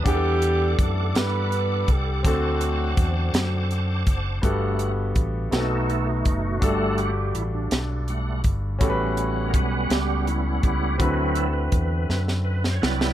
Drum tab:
HH |x-x-x-x-x-x-|x-x-x-x-x-x-|x-x-x-x-x-x-|x-x-x-x-x-x-|
SD |------o-----|------o-----|------o-----|------o-----|
BD |o---o-----o-|o---o-----o-|o---o-----o-|o---------o-|

HH |x-x-x-x-x-x-|x-x-x-------|
SD |------o-----|------oo-ooo|
BD |o---o-----o-|o---o-------|